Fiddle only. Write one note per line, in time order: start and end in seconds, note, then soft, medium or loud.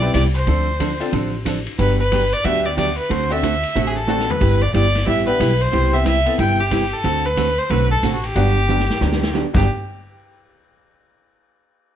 0.00 0.13 D5 medium
0.14 0.23 D5 medium
0.34 1.29 C5 medium
1.78 1.98 B4 medium
1.99 2.34 B4 medium
2.33 2.46 D5 medium
2.44 2.67 E5 loud
2.65 2.77 D5 medium
2.77 2.96 D5 medium
2.98 3.13 B4 medium
3.11 3.33 C5 loud
3.31 3.89 E5 loud
3.87 3.98 G#4 medium
3.96 4.31 A4 medium
4.30 4.63 B4 medium
4.62 4.73 D5 medium
4.74 5.04 D5 loud
5.07 5.26 E5 loud
5.26 5.63 B4 medium
5.61 5.95 C5 loud
5.94 6.05 E5 medium
6.06 6.36 E5 loud
6.40 6.62 G5 loud
6.60 6.94 G4 medium
6.93 7.27 A4 loud
7.26 7.60 B4 loud
7.58 7.72 C5 medium
7.70 7.90 B4 loud
7.91 8.13 A4 medium
8.15 8.26 F#4 medium
8.24 9.34 G4 medium
9.55 9.66 G4 medium